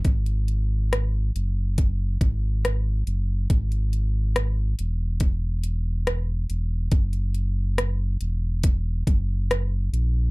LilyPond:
<<
  \new Staff \with { instrumentName = "Sub bass" } { \clef bass \time 4/4 \key fis \mixolydian \tempo 4 = 70 gis,,4. fis,,4 gis,,4 fis,,8 | gis,,4. e,,2 e,,8 | fis,,4. e,,4 fis,,4 ais,,8 | }
  \new DrumStaff \with { instrumentName = "Drums" } \drummode { \time 4/4 <hh bd>16 hh16 hh8 <hh ss>8 hh8 <hh bd>8 <hh bd>8 <hh ss>8 hh8 | <hh bd>16 hh16 hh8 <hh ss>8 hh8 <hh bd>8 hh8 <hh ss>8 hh8 | <hh bd>16 hh16 hh8 <hh ss>8 hh8 <hh bd>8 <hh bd>8 <hh ss>8 hh8 | }
>>